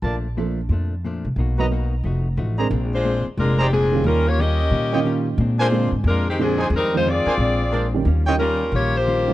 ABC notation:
X:1
M:4/4
L:1/8
Q:"Swing" 1/4=180
K:Bb
V:1 name="Trumpet section"
[FBda] z6 z | z [^F=B^d^a] z4 z [_Ac=d_b] | [K:Bbmix] z4 z [Acdb] z2 | z4 z [F_deg] z2 |
z [DBca] z4 z [EAca] | z3 [DBca] z2 [DBcd] z | z [F_deg] z6 |]
V:2 name="Saxophone section"
z8 | z8 | [K:Bbmix] z [A,DFc]2 z [A,DFB] [E,A,CG] [F,CDA]2 | [G,_DFB] [B,FG_d] [DGBe]4- [DGBe] z |
z [A,DFc]2 z [A,DFB] [E,A,CG] [F,CDA]2 | [G,CEB] [A,EFc] [CFAd]4- [CFAd] z | z2 [G,_DFB]2 [B,FG_d] [B,FGc]3 |]
V:3 name="Grand piano"
z2 [F,B,DA] z4 z | z [^F,=B,^D^A] z4 z [_A,C=D_B] | [K:Bbmix] z6 z [E,G,B,_DF]- | [E,G,B,_DF]2 z3 [E,G,B,DF]3 |
z2 [D,A,B,CF] z3 [D,A,B,CG] z | z [E,F,A,CF] z4 z [E,G,B,_DG] | z [E,G,B,_DF] z4 z [E,G,B,DF] |]
V:4 name="Hollow-body jazz guitar"
[B,,F,A,D] z [B,,F,A,D] z [B,,F,A,D] z [B,,F,A,D] z | [=B,,^A,^D^F] z [B,,A,DF] z [=F,=A,E_G] z [F,A,EG] z | [K:Bbmix] [B,,A,CD] z [B,,A,CD] z [B,,A,CD] z [B,,A,CD] z | [E,G,_DF] z [E,G,DF] z [E,G,DF] z [E,G,DF] z |
[B,,A,CD] z [B,,A,CD] z [B,,A,CD] z [B,,A,CD] z | [F,,E,A,C] z [F,,E,A,C] z [B,,A,CD] z [B,,A,CD] z | [E,G,_DF] z [E,G,DF] z [E,G,DF] z [E,G,DF] z |]
V:5 name="Upright bass" clef=bass
B,,,4 F,,3 C,, | =B,,,4 F,,,2 A,,,2 | [K:Bbmix] B,,,3 z F,,,4 | E,,4 B,,4 |
B,,3 A,, F,,4 | F,,3 z B,,,4 | E,,4 B,,,4 |]